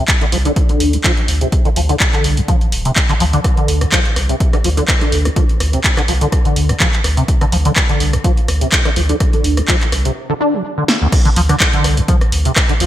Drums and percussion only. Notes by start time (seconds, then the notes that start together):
0.08 kick, clap, closed hi-hat
0.21 closed hi-hat
0.32 open hi-hat
0.45 closed hi-hat
0.56 kick, closed hi-hat
0.69 closed hi-hat
0.80 open hi-hat
0.93 closed hi-hat
1.04 kick, clap, closed hi-hat
1.17 closed hi-hat
1.28 open hi-hat
1.41 closed hi-hat
1.52 kick, closed hi-hat
1.65 closed hi-hat
1.76 open hi-hat
1.89 closed hi-hat
2.00 kick, clap, closed hi-hat
2.13 clap, closed hi-hat
2.24 open hi-hat
2.37 closed hi-hat
2.48 kick, closed hi-hat
2.61 closed hi-hat
2.72 open hi-hat
2.85 closed hi-hat
2.96 kick, clap, closed hi-hat
3.09 clap, closed hi-hat
3.20 open hi-hat
3.33 closed hi-hat
3.44 kick, cross-stick, closed hi-hat
3.57 closed hi-hat
3.68 open hi-hat
3.81 cross-stick, closed hi-hat
3.92 kick, clap, closed hi-hat
4.05 closed hi-hat
4.16 cross-stick, open hi-hat
4.29 closed hi-hat
4.40 kick, closed hi-hat
4.53 cross-stick, closed hi-hat
4.64 open hi-hat
4.77 closed hi-hat
4.88 kick, cross-stick, clap, closed hi-hat
5.01 closed hi-hat
5.12 open hi-hat
5.25 cross-stick, closed hi-hat
5.36 kick, closed hi-hat
5.49 closed hi-hat
5.60 cross-stick, open hi-hat
5.73 closed hi-hat
5.84 kick, clap, closed hi-hat
5.97 cross-stick, clap, closed hi-hat
6.08 open hi-hat
6.21 closed hi-hat
6.32 kick, cross-stick, closed hi-hat
6.45 closed hi-hat
6.56 open hi-hat
6.69 cross-stick, closed hi-hat
6.80 kick, clap, closed hi-hat
6.93 clap, closed hi-hat
7.04 cross-stick, open hi-hat
7.17 closed hi-hat
7.28 kick, closed hi-hat
7.41 cross-stick, closed hi-hat
7.52 open hi-hat
7.65 closed hi-hat
7.76 kick, cross-stick, clap, closed hi-hat
7.89 closed hi-hat
8.00 open hi-hat
8.13 cross-stick, closed hi-hat
8.24 kick, closed hi-hat
8.37 closed hi-hat
8.48 cross-stick, open hi-hat
8.61 closed hi-hat
8.72 kick, clap, closed hi-hat
8.85 cross-stick, closed hi-hat
8.96 open hi-hat
9.09 closed hi-hat
9.20 kick, cross-stick, closed hi-hat
9.33 closed hi-hat
9.44 open hi-hat
9.57 cross-stick, closed hi-hat
9.68 kick, clap, closed hi-hat
9.81 clap, closed hi-hat
9.92 cross-stick, open hi-hat
10.05 closed hi-hat
10.88 snare
11.12 kick, cross-stick, closed hi-hat, crash
11.25 closed hi-hat
11.36 open hi-hat
11.49 cross-stick, closed hi-hat
11.60 kick, clap, closed hi-hat
11.73 closed hi-hat
11.84 cross-stick, open hi-hat
11.97 closed hi-hat
12.08 kick, closed hi-hat
12.21 cross-stick, closed hi-hat
12.32 open hi-hat
12.45 closed hi-hat
12.56 kick, cross-stick, clap, closed hi-hat
12.69 closed hi-hat
12.80 open hi-hat